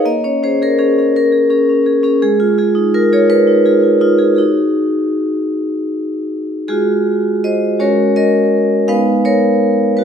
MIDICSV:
0, 0, Header, 1, 2, 480
1, 0, Start_track
1, 0, Key_signature, -6, "minor"
1, 0, Tempo, 722022
1, 27, Time_signature, 6, 3, 24, 8
1, 2426, Tempo, 758534
1, 4826, Tempo, 723764
1, 6549, End_track
2, 0, Start_track
2, 0, Title_t, "Vibraphone"
2, 0, Program_c, 0, 11
2, 0, Control_c, 0, 64, 127
2, 35, Note_on_c, 0, 58, 57
2, 37, Control_c, 0, 64, 0
2, 37, Note_on_c, 0, 75, 84
2, 141, Control_c, 0, 64, 127
2, 154, Note_off_c, 0, 75, 0
2, 159, Note_on_c, 0, 61, 47
2, 162, Note_on_c, 0, 73, 69
2, 278, Note_off_c, 0, 61, 0
2, 278, Note_off_c, 0, 73, 0
2, 286, Note_on_c, 0, 61, 46
2, 290, Note_on_c, 0, 68, 47
2, 290, Note_on_c, 0, 72, 76
2, 390, Note_off_c, 0, 61, 0
2, 392, Note_off_c, 0, 68, 0
2, 404, Note_off_c, 0, 72, 0
2, 411, Note_on_c, 0, 68, 45
2, 417, Note_on_c, 0, 70, 71
2, 515, Note_off_c, 0, 68, 0
2, 523, Note_on_c, 0, 68, 74
2, 525, Note_on_c, 0, 61, 50
2, 528, Note_off_c, 0, 70, 0
2, 644, Note_off_c, 0, 61, 0
2, 649, Note_off_c, 0, 68, 0
2, 652, Note_on_c, 0, 61, 46
2, 657, Note_on_c, 0, 68, 45
2, 769, Control_c, 0, 64, 0
2, 773, Note_on_c, 0, 70, 79
2, 858, Note_off_c, 0, 61, 0
2, 861, Note_off_c, 0, 68, 0
2, 864, Control_c, 0, 64, 127
2, 879, Note_on_c, 0, 68, 49
2, 992, Note_off_c, 0, 68, 0
2, 997, Note_on_c, 0, 61, 53
2, 1000, Note_on_c, 0, 68, 54
2, 1101, Note_off_c, 0, 61, 0
2, 1102, Note_off_c, 0, 68, 0
2, 1126, Note_on_c, 0, 61, 49
2, 1238, Note_on_c, 0, 68, 55
2, 1308, Note_off_c, 0, 61, 0
2, 1349, Note_off_c, 0, 68, 0
2, 1351, Note_on_c, 0, 61, 57
2, 1357, Note_on_c, 0, 68, 61
2, 1445, Note_off_c, 0, 58, 0
2, 1457, Note_off_c, 0, 61, 0
2, 1460, Note_off_c, 0, 68, 0
2, 1476, Note_off_c, 0, 70, 0
2, 1478, Control_c, 0, 64, 0
2, 1479, Note_on_c, 0, 68, 88
2, 1480, Note_on_c, 0, 56, 68
2, 1594, Note_on_c, 0, 65, 59
2, 1609, Control_c, 0, 64, 127
2, 1708, Note_off_c, 0, 65, 0
2, 1711, Note_off_c, 0, 68, 0
2, 1716, Note_on_c, 0, 65, 58
2, 1719, Note_on_c, 0, 68, 56
2, 1819, Note_off_c, 0, 65, 0
2, 1820, Note_off_c, 0, 68, 0
2, 1829, Note_on_c, 0, 63, 53
2, 1957, Note_on_c, 0, 70, 86
2, 1959, Note_on_c, 0, 65, 58
2, 2018, Note_off_c, 0, 63, 0
2, 2068, Note_off_c, 0, 65, 0
2, 2071, Note_off_c, 0, 70, 0
2, 2076, Note_on_c, 0, 65, 50
2, 2080, Note_on_c, 0, 68, 57
2, 2081, Note_on_c, 0, 73, 86
2, 2192, Note_on_c, 0, 71, 99
2, 2193, Note_off_c, 0, 73, 0
2, 2288, Note_off_c, 0, 65, 0
2, 2290, Note_off_c, 0, 68, 0
2, 2308, Note_on_c, 0, 63, 52
2, 2429, Note_on_c, 0, 65, 53
2, 2430, Note_on_c, 0, 68, 59
2, 2497, Note_off_c, 0, 63, 0
2, 2532, Note_off_c, 0, 65, 0
2, 2533, Note_off_c, 0, 68, 0
2, 2542, Note_on_c, 0, 65, 50
2, 2649, Note_off_c, 0, 65, 0
2, 2655, Note_on_c, 0, 63, 54
2, 2657, Note_on_c, 0, 65, 76
2, 2662, Note_off_c, 0, 71, 0
2, 2758, Note_off_c, 0, 65, 0
2, 2765, Note_on_c, 0, 65, 51
2, 2765, Note_on_c, 0, 68, 53
2, 2846, Note_off_c, 0, 63, 0
2, 2867, Note_on_c, 0, 66, 42
2, 2870, Note_off_c, 0, 68, 0
2, 2876, Note_off_c, 0, 56, 0
2, 2877, Note_on_c, 0, 68, 44
2, 2878, Note_off_c, 0, 65, 0
2, 2890, Note_on_c, 0, 63, 68
2, 2906, Control_c, 0, 64, 0
2, 3032, Control_c, 0, 64, 127
2, 3615, Note_off_c, 0, 63, 0
2, 4311, Note_off_c, 0, 66, 0
2, 4317, Note_off_c, 0, 68, 0
2, 4346, Note_on_c, 0, 66, 48
2, 4346, Note_on_c, 0, 68, 78
2, 4348, Note_on_c, 0, 56, 54
2, 4357, Note_on_c, 0, 65, 60
2, 4364, Control_c, 0, 64, 0
2, 4477, Control_c, 0, 64, 127
2, 4805, Note_off_c, 0, 65, 0
2, 4825, Note_off_c, 0, 68, 0
2, 4826, Note_on_c, 0, 75, 79
2, 4831, Note_on_c, 0, 72, 60
2, 5045, Note_off_c, 0, 66, 0
2, 5046, Note_off_c, 0, 56, 0
2, 5055, Note_off_c, 0, 72, 0
2, 5060, Note_on_c, 0, 66, 46
2, 5062, Note_on_c, 0, 56, 61
2, 5063, Note_on_c, 0, 61, 47
2, 5064, Note_on_c, 0, 73, 81
2, 5069, Note_off_c, 0, 75, 0
2, 5070, Note_on_c, 0, 70, 61
2, 5080, Control_c, 0, 64, 0
2, 5182, Control_c, 0, 64, 127
2, 5292, Note_off_c, 0, 70, 0
2, 5304, Note_on_c, 0, 75, 84
2, 5306, Note_off_c, 0, 73, 0
2, 5307, Note_on_c, 0, 70, 65
2, 5756, Note_off_c, 0, 70, 0
2, 5757, Note_off_c, 0, 66, 0
2, 5758, Note_off_c, 0, 56, 0
2, 5758, Note_off_c, 0, 61, 0
2, 5777, Note_on_c, 0, 56, 58
2, 5780, Note_on_c, 0, 63, 50
2, 5780, Note_on_c, 0, 77, 85
2, 5781, Note_off_c, 0, 75, 0
2, 5782, Note_on_c, 0, 59, 50
2, 5786, Note_on_c, 0, 71, 65
2, 5796, Control_c, 0, 64, 0
2, 5906, Control_c, 0, 64, 127
2, 6008, Note_off_c, 0, 71, 0
2, 6021, Note_off_c, 0, 77, 0
2, 6025, Note_on_c, 0, 73, 85
2, 6029, Note_on_c, 0, 70, 67
2, 6483, Note_off_c, 0, 70, 0
2, 6502, Note_on_c, 0, 71, 70
2, 6508, Note_off_c, 0, 73, 0
2, 6512, Note_on_c, 0, 66, 56
2, 6549, Note_off_c, 0, 56, 0
2, 6549, Note_off_c, 0, 59, 0
2, 6549, Note_off_c, 0, 63, 0
2, 6549, Note_off_c, 0, 66, 0
2, 6549, Note_off_c, 0, 71, 0
2, 6549, End_track
0, 0, End_of_file